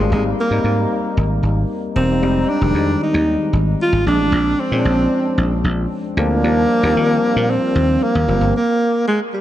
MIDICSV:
0, 0, Header, 1, 4, 480
1, 0, Start_track
1, 0, Tempo, 526778
1, 108, Time_signature, 4, 2, 24, 8
1, 8573, End_track
2, 0, Start_track
2, 0, Title_t, "Alto saxophone"
2, 0, Program_c, 0, 65
2, 0, Note_on_c, 0, 56, 78
2, 111, Note_off_c, 0, 56, 0
2, 115, Note_on_c, 0, 56, 74
2, 221, Note_off_c, 0, 56, 0
2, 366, Note_on_c, 0, 58, 78
2, 1039, Note_off_c, 0, 58, 0
2, 1785, Note_on_c, 0, 60, 78
2, 2269, Note_on_c, 0, 62, 94
2, 2282, Note_off_c, 0, 60, 0
2, 2747, Note_off_c, 0, 62, 0
2, 2760, Note_on_c, 0, 63, 86
2, 3200, Note_off_c, 0, 63, 0
2, 3479, Note_on_c, 0, 65, 92
2, 3696, Note_off_c, 0, 65, 0
2, 3715, Note_on_c, 0, 62, 98
2, 4195, Note_on_c, 0, 60, 87
2, 4208, Note_off_c, 0, 62, 0
2, 5150, Note_off_c, 0, 60, 0
2, 5640, Note_on_c, 0, 58, 107
2, 6837, Note_on_c, 0, 60, 95
2, 6851, Note_off_c, 0, 58, 0
2, 7318, Note_on_c, 0, 58, 90
2, 7331, Note_off_c, 0, 60, 0
2, 7793, Note_off_c, 0, 58, 0
2, 7801, Note_on_c, 0, 58, 89
2, 8242, Note_off_c, 0, 58, 0
2, 8273, Note_on_c, 0, 56, 85
2, 8381, Note_off_c, 0, 56, 0
2, 8511, Note_on_c, 0, 55, 84
2, 8573, Note_off_c, 0, 55, 0
2, 8573, End_track
3, 0, Start_track
3, 0, Title_t, "Tine electric piano"
3, 0, Program_c, 1, 4
3, 0, Control_c, 1, 64, 127
3, 0, Note_on_c, 1, 55, 68
3, 0, Note_on_c, 1, 58, 61
3, 0, Note_on_c, 1, 62, 61
3, 0, Note_on_c, 1, 65, 70
3, 0, Note_on_c, 1, 66, 69
3, 0, Note_on_c, 1, 67, 89
3, 99, Note_off_c, 1, 55, 0
3, 99, Note_on_c, 1, 55, 62
3, 103, Note_off_c, 1, 58, 0
3, 103, Note_on_c, 1, 58, 60
3, 107, Note_on_c, 1, 60, 56
3, 113, Note_on_c, 1, 63, 72
3, 120, Control_c, 1, 64, 0
3, 121, Note_off_c, 1, 65, 0
3, 124, Note_off_c, 1, 66, 0
3, 124, Note_off_c, 1, 67, 0
3, 128, Note_off_c, 1, 62, 0
3, 286, Control_c, 1, 64, 127
3, 330, Note_off_c, 1, 55, 0
3, 332, Note_off_c, 1, 58, 0
3, 333, Note_off_c, 1, 60, 0
3, 337, Note_off_c, 1, 63, 0
3, 464, Note_on_c, 1, 55, 64
3, 467, Note_on_c, 1, 58, 60
3, 469, Note_on_c, 1, 60, 59
3, 476, Note_on_c, 1, 63, 73
3, 1069, Note_off_c, 1, 55, 0
3, 1070, Note_off_c, 1, 58, 0
3, 1072, Note_off_c, 1, 60, 0
3, 1075, Note_off_c, 1, 63, 0
3, 1783, Note_on_c, 1, 55, 63
3, 1787, Note_on_c, 1, 58, 59
3, 1792, Note_on_c, 1, 60, 58
3, 1797, Note_on_c, 1, 63, 70
3, 1935, Note_off_c, 1, 55, 0
3, 1937, Note_off_c, 1, 58, 0
3, 1940, Note_off_c, 1, 60, 0
3, 1942, Note_off_c, 1, 63, 0
3, 2022, Note_on_c, 1, 55, 68
3, 2023, Note_on_c, 1, 56, 55
3, 2028, Note_on_c, 1, 60, 59
3, 2035, Note_on_c, 1, 63, 71
3, 2039, Control_c, 1, 64, 0
3, 2211, Control_c, 1, 64, 127
3, 2250, Note_off_c, 1, 55, 0
3, 2251, Note_off_c, 1, 56, 0
3, 2253, Note_off_c, 1, 60, 0
3, 2256, Note_off_c, 1, 63, 0
3, 2378, Note_on_c, 1, 55, 64
3, 2385, Note_on_c, 1, 56, 58
3, 2386, Note_on_c, 1, 60, 57
3, 2394, Note_on_c, 1, 51, 73
3, 2986, Note_off_c, 1, 55, 0
3, 2989, Note_off_c, 1, 56, 0
3, 2990, Note_off_c, 1, 60, 0
3, 2994, Note_off_c, 1, 51, 0
3, 3701, Note_on_c, 1, 53, 65
3, 3704, Note_on_c, 1, 56, 61
3, 3710, Note_on_c, 1, 60, 62
3, 3711, Note_on_c, 1, 62, 76
3, 3718, Control_c, 1, 64, 0
3, 3874, Control_c, 1, 64, 127
3, 4183, Note_off_c, 1, 53, 0
3, 4185, Note_off_c, 1, 56, 0
3, 4188, Note_off_c, 1, 60, 0
3, 4188, Note_off_c, 1, 62, 0
3, 4303, Note_on_c, 1, 53, 63
3, 4307, Note_on_c, 1, 56, 56
3, 4309, Note_on_c, 1, 60, 63
3, 4313, Note_on_c, 1, 61, 60
3, 4367, Note_off_c, 1, 61, 0
3, 4371, Note_on_c, 1, 62, 79
3, 4909, Note_off_c, 1, 53, 0
3, 4911, Note_off_c, 1, 56, 0
3, 4912, Note_off_c, 1, 60, 0
3, 4942, Note_off_c, 1, 62, 0
3, 5619, Note_on_c, 1, 53, 66
3, 5622, Note_on_c, 1, 56, 64
3, 5626, Note_on_c, 1, 60, 63
3, 5629, Note_on_c, 1, 62, 73
3, 5774, Note_off_c, 1, 53, 0
3, 5775, Note_off_c, 1, 56, 0
3, 5777, Note_off_c, 1, 60, 0
3, 5778, Note_off_c, 1, 62, 0
3, 5858, Note_on_c, 1, 53, 63
3, 5865, Note_on_c, 1, 55, 61
3, 5866, Note_on_c, 1, 58, 59
3, 5869, Note_on_c, 1, 62, 68
3, 5878, Control_c, 1, 64, 0
3, 6018, Control_c, 1, 64, 127
3, 6089, Note_off_c, 1, 53, 0
3, 6092, Note_off_c, 1, 55, 0
3, 6093, Note_off_c, 1, 58, 0
3, 6094, Note_off_c, 1, 62, 0
3, 6224, Note_on_c, 1, 53, 80
3, 6229, Note_on_c, 1, 58, 73
3, 6230, Note_on_c, 1, 55, 72
3, 6236, Note_on_c, 1, 60, 87
3, 6830, Note_off_c, 1, 53, 0
3, 6833, Note_off_c, 1, 55, 0
3, 6833, Note_off_c, 1, 58, 0
3, 6836, Note_off_c, 1, 60, 0
3, 7542, Note_on_c, 1, 53, 66
3, 7544, Note_on_c, 1, 55, 59
3, 7547, Note_on_c, 1, 58, 58
3, 7552, Note_on_c, 1, 60, 71
3, 7696, Note_off_c, 1, 53, 0
3, 7697, Note_off_c, 1, 55, 0
3, 7699, Note_off_c, 1, 58, 0
3, 7701, Note_off_c, 1, 60, 0
3, 7799, Control_c, 1, 64, 0
3, 8573, End_track
4, 0, Start_track
4, 0, Title_t, "Slap bass"
4, 0, Program_c, 2, 36
4, 106, Note_on_c, 2, 32, 91
4, 295, Note_off_c, 2, 32, 0
4, 464, Note_on_c, 2, 44, 85
4, 559, Note_off_c, 2, 44, 0
4, 584, Note_on_c, 2, 44, 76
4, 773, Note_off_c, 2, 44, 0
4, 1067, Note_on_c, 2, 32, 75
4, 1255, Note_off_c, 2, 32, 0
4, 1300, Note_on_c, 2, 32, 76
4, 1491, Note_off_c, 2, 32, 0
4, 1784, Note_on_c, 2, 28, 78
4, 2028, Note_off_c, 2, 28, 0
4, 2028, Note_on_c, 2, 29, 85
4, 2215, Note_off_c, 2, 29, 0
4, 2381, Note_on_c, 2, 29, 81
4, 2477, Note_off_c, 2, 29, 0
4, 2499, Note_on_c, 2, 41, 88
4, 2690, Note_off_c, 2, 41, 0
4, 2863, Note_on_c, 2, 39, 79
4, 3052, Note_off_c, 2, 39, 0
4, 3216, Note_on_c, 2, 32, 77
4, 3408, Note_off_c, 2, 32, 0
4, 3576, Note_on_c, 2, 32, 87
4, 3674, Note_off_c, 2, 32, 0
4, 3702, Note_on_c, 2, 34, 84
4, 3816, Note_off_c, 2, 34, 0
4, 3816, Note_on_c, 2, 33, 88
4, 3914, Note_off_c, 2, 33, 0
4, 3937, Note_on_c, 2, 34, 100
4, 4128, Note_off_c, 2, 34, 0
4, 4298, Note_on_c, 2, 46, 85
4, 4395, Note_off_c, 2, 46, 0
4, 4420, Note_on_c, 2, 34, 76
4, 4610, Note_off_c, 2, 34, 0
4, 4899, Note_on_c, 2, 34, 83
4, 5090, Note_off_c, 2, 34, 0
4, 5140, Note_on_c, 2, 34, 71
4, 5331, Note_off_c, 2, 34, 0
4, 5622, Note_on_c, 2, 38, 84
4, 5867, Note_off_c, 2, 38, 0
4, 5867, Note_on_c, 2, 39, 93
4, 6056, Note_off_c, 2, 39, 0
4, 6225, Note_on_c, 2, 39, 83
4, 6320, Note_off_c, 2, 39, 0
4, 6348, Note_on_c, 2, 51, 87
4, 6536, Note_off_c, 2, 51, 0
4, 6708, Note_on_c, 2, 46, 88
4, 6897, Note_off_c, 2, 46, 0
4, 7066, Note_on_c, 2, 39, 82
4, 7255, Note_off_c, 2, 39, 0
4, 7428, Note_on_c, 2, 39, 86
4, 7522, Note_off_c, 2, 39, 0
4, 7547, Note_on_c, 2, 30, 85
4, 7642, Note_off_c, 2, 30, 0
4, 7662, Note_on_c, 2, 31, 86
4, 7759, Note_off_c, 2, 31, 0
4, 8573, End_track
0, 0, End_of_file